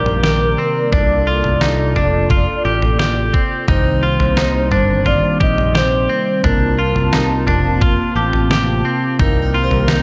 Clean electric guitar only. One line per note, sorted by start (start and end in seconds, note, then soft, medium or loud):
0.00 0.22 G4 medium
0.23 0.58 G4 medium
0.58 0.92 C4 medium
0.92 1.27 D4 medium
1.27 1.61 F4 medium
1.61 1.96 D#4 medium
1.96 2.30 D4 medium
2.31 2.65 F4 medium
2.65 2.98 G4 medium
2.99 3.34 G4 medium
3.33 3.68 C4 medium
3.68 4.03 D#4 medium
4.03 4.37 F4 medium
4.37 4.71 D#4 medium
4.72 5.06 D4 medium
5.06 5.40 F4 medium
5.40 5.74 G4 medium
5.75 6.09 G4 medium
6.09 6.44 C4 medium
6.44 6.79 D4 medium
6.79 7.13 F4 medium
7.13 7.47 D#4 medium
7.47 7.82 D4 medium
7.82 8.16 F4 medium
8.16 8.50 G4 medium
8.51 8.85 G4 medium
8.85 9.19 C4 medium
9.20 9.54 D#4 medium
9.54 9.89 F4 medium
9.89 10.02 D#4 medium